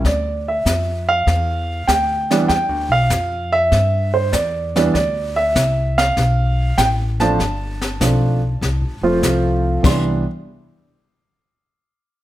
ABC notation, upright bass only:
X:1
M:4/4
L:1/8
Q:"Swing" 1/4=98
K:Gmix
V:1 name="Upright bass" clef=bass
D,,2 F,,2 E,,2 D,,2 | (3E,, D,, B,,, F,,2 G,,2 E,,2 | D,,2 C,,2 B,,,2 A,,,2 | G,,,2 B,,,2 (3C,, G,,, F,,, C,,2 |
C,, z6 z |]